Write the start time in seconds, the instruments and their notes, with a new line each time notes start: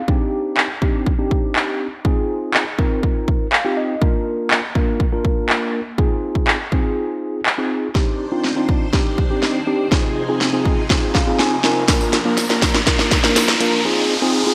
0.08 tine electric piano C4 D4 D#4 G4, kick
0.57 clap
0.82 tine electric piano C4 D4 D#4 G4, kick
1.06 kick
1.18 tine electric piano C4 D4 D#4 G4
1.31 kick
1.56 clap
2.05 tine electric piano C4 D#4 F4 G#4, kick
2.54 clap
2.78 tine electric piano C4 D#4 F4 A#4, kick
3.03 kick
3.28 kick
3.52 tine electric piano F5, clap
3.65 tine electric piano C4 D#4 F4 G4
3.77 tine electric piano D#5
4.01 tine electric piano A#3 D4 F4 A#4, kick
4.51 clap
4.75 tine electric piano A#3 D4 F4 A#4, kick
5.00 kick
5.12 tine electric piano A#3 D4 F4 A#4
5.25 kick
5.49 clap
5.98 tine electric piano C4 D#4 F4 G#4, kick
6.35 kick
6.47 clap
6.72 tine electric piano C4 D#4 F4 G#4, kick
7.46 clap
7.58 tine electric piano C4 D#4 F4 G#4
7.95 string machine D#3 D4 C5, tine electric piano C4 D4 D#4 G4, kick, snare, riser
8.32 tine electric piano C4 D4 D#4 F4
8.44 snare
8.56 tine electric piano C4 D4 D#4 F4
8.69 kick
8.93 tine electric piano C4 D4 D#4 G4, kick, snare
9.18 kick
9.30 tine electric piano C4 D4 D#4 G4
9.43 snare
9.67 tine electric piano C4 D4 D#4 G4
9.91 string machine C3 F3 D#4 G#4, tine electric piano C4 D#4 F4 G#4, kick, snare
10.28 tine electric piano C4 D#4 F4 G#4
10.41 snare
10.53 tine electric piano C4 D#4 F4 G#4
10.65 kick
10.90 tine electric piano C4 D#4 F4 G#4, kick, snare
11.15 tine electric piano F5, kick, snare
11.27 tine electric piano C4 D#4 F4 G#4
11.39 tine electric piano G#5, snare
11.64 tine electric piano C4 D#4 F4 A#4, snare
11.88 string machine F3 D4 A#4, tine electric piano A#3 D4 F4 A#4, kick, snare, closed hi-hat, tambourine
12.01 tambourine
12.13 snare, closed hi-hat
12.25 tine electric piano A#3 D4 F4 A#4
12.37 snare, closed hi-hat, tambourine
12.50 tine electric piano A#3 D4 F4 A#4, snare, tambourine
12.62 kick, snare, closed hi-hat, tambourine
12.74 snare
12.86 tine electric piano A#3 D4 F4 A#4, kick, snare, closed hi-hat
12.99 snare, tambourine
13.11 kick, snare, closed hi-hat, tambourine
13.23 tine electric piano A#3 D4 F4 A#4, snare, tambourine
13.36 snare, closed hi-hat, tambourine
13.48 snare, tambourine
13.60 tine electric piano A#3 D4 F4 A#4, closed hi-hat, tambourine
13.85 tine electric piano C4 D#4 F4 G#4, string machine D#4 G#4
14.22 tine electric piano C4 D#4 F4 G#4
14.46 tine electric piano C4 D#4 F4 G#4